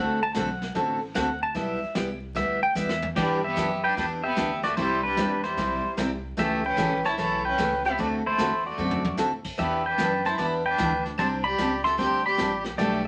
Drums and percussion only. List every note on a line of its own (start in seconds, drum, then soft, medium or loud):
0.34 snare medium
0.34 hi-hat pedal medium
0.62 snare soft
0.75 brush sweep medium
0.75 snare soft
1.15 snare medium
1.15 hi-hat pedal medium
1.55 brush sweep medium
1.55 snare soft
1.95 snare medium
1.95 hi-hat pedal medium
2.36 brush sweep soft
2.36 snare soft
2.76 hi-hat pedal medium
2.89 snare medium
3.02 floor tom medium
3.16 brush sweep medium
3.16 kick medium
3.16 snare soft
3.16 crash medium
3.57 snare medium
3.57 hi-hat pedal medium
3.97 brush sweep soft
3.97 snare soft
4.37 snare medium
4.37 hi-hat pedal medium
4.63 snare soft
4.77 brush sweep soft
4.77 snare soft
5.17 snare medium
5.17 hi-hat pedal medium
5.44 snare soft
5.57 brush sweep soft
5.57 snare soft
5.97 snare medium
5.97 hi-hat pedal medium
6.38 brush sweep soft
6.38 snare soft
6.78 snare medium
6.78 hi-hat pedal medium
7.04 snare soft
7.18 brush sweep medium
7.18 snare soft
7.58 snare medium
7.58 hi-hat pedal medium
7.85 snare soft
7.98 brush sweep soft
7.98 snare soft
8.38 snare medium
8.38 hi-hat pedal medium
8.91 floor tom medium
9.05 floor tom medium
9.18 snare medium
9.18 hi-hat pedal medium
9.44 kick medium
9.44 crash medium
9.58 brush sweep soft
9.58 snare soft
9.98 snare medium
9.98 hi-hat pedal medium
10.25 snare soft
10.38 brush sweep medium
10.38 snare soft
10.78 snare medium
10.78 hi-hat pedal medium
11.06 snare soft
11.18 brush sweep medium
11.18 snare soft
11.58 snare medium
11.58 hi-hat pedal medium
11.85 snare soft
11.99 brush sweep soft
11.99 snare soft
12.38 snare medium
12.38 hi-hat pedal medium
12.64 snare soft
12.78 brush sweep soft
12.78 snare soft